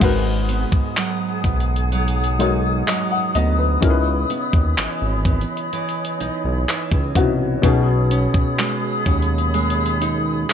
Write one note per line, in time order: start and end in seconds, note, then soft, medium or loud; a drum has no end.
0.00 0.65 G#1 loud
0.00 3.83 G#2 medium
0.00 0.11 E3 medium
0.00 2.35 G#3 medium
0.00 0.11 A#3 medium
0.00 0.11 C#4 medium
0.00 2.35 D#4 medium
0.00 2.36 F#4 medium
0.00 3.79 G#4 medium
0.00 2.36 A#4 medium
0.00 2.36 B4 medium
0.00 3.79 F#5 medium
0.00 3.79 G#5 medium
0.00 7.37 D#6 medium
0.00 kick loud
0.00 closed hi-hat medium
0.00 crash medium
0.49 1.44 B3 medium
0.49 closed hi-hat medium
0.72 0.82 B1 soft
0.72 kick loud
0.97 1.91 F#3 medium
0.97 clap loud
0.97 closed hi-hat medium
1.44 2.83 B1 medium
1.44 3.34 B3 medium
1.44 kick medium
1.44 closed hi-hat soft
1.60 closed hi-hat soft
1.76 closed hi-hat soft
1.92 2.86 F#3 medium
1.92 closed hi-hat soft
2.08 closed hi-hat medium
2.24 closed hi-hat medium
2.39 3.82 G#3 medium
2.39 3.81 D#4 medium
2.39 4.81 D#4 medium
2.39 3.83 F#4 medium
2.39 2.88 A#4 medium
2.39 2.88 C#5 medium
2.39 closed hi-hat medium
2.87 3.92 F#3 medium
2.87 3.10 D#5 medium
2.87 clap loud
2.87 closed hi-hat medium
3.11 3.34 F#5 medium
3.35 3.78 D2 medium
3.35 4.30 B3 medium
3.35 3.58 D#5 medium
3.35 closed hi-hat medium
3.59 3.89 B4 medium
3.81 4.25 C#2 loud
3.81 7.11 C#3 medium
3.81 7.11 C#4 medium
3.81 7.12 D#4 medium
3.81 7.12 E4 medium
3.81 3.90 A#4 medium
3.81 10.53 C#5 medium
3.81 7.35 D#5 medium
3.81 7.32 B5 medium
3.81 kick loud
3.81 closed hi-hat medium
3.90 7.16 B4 medium
4.30 5.25 B3 medium
4.30 closed hi-hat medium
4.53 4.75 D#2 medium
4.53 kick medium
4.78 4.87 G#1 soft
4.78 5.72 E3 medium
4.78 clap loud
4.78 closed hi-hat medium
5.02 5.44 G#1 medium
5.25 7.15 B3 medium
5.25 kick medium
5.25 closed hi-hat soft
5.41 closed hi-hat soft
5.57 closed hi-hat soft
5.73 6.67 E3 medium
5.73 closed hi-hat soft
5.89 closed hi-hat medium
6.05 closed hi-hat medium
6.20 6.30 B1 medium
6.20 8.14 D#4 medium
6.20 closed hi-hat medium
6.44 6.66 B1 medium
6.68 7.73 E3 medium
6.68 clap loud
6.68 closed hi-hat medium
6.91 7.13 C#2 medium
6.91 kick medium
7.15 7.58 C2 medium
7.15 7.60 B2 medium
7.15 8.11 B3 medium
7.15 7.62 C#4 medium
7.15 7.63 D#4 medium
7.15 7.64 E4 medium
7.15 7.64 F#4 medium
7.15 kick loud
7.15 closed hi-hat medium
7.62 8.27 B1 loud
7.62 10.53 B2 medium
7.62 10.53 B3 medium
7.62 10.53 C#4 medium
7.62 10.53 D#4 medium
7.62 10.53 G#4 medium
7.62 10.53 B5 medium
7.62 10.53 D#6 medium
7.62 kick loud
7.62 closed hi-hat medium
8.11 9.05 C#4 medium
8.11 closed hi-hat medium
8.34 8.44 D#2 medium
8.34 kick medium
8.59 9.53 G#3 medium
8.59 clap loud
8.59 closed hi-hat medium
9.06 10.45 D#2 medium
9.06 10.53 C#4 medium
9.06 kick medium
9.06 closed hi-hat soft
9.22 closed hi-hat soft
9.38 closed hi-hat soft
9.54 10.48 G#3 medium
9.54 closed hi-hat soft
9.70 closed hi-hat medium
9.86 closed hi-hat medium
10.01 10.53 D#4 medium
10.01 closed hi-hat medium
10.49 10.53 G#3 medium
10.49 clap loud
10.49 closed hi-hat medium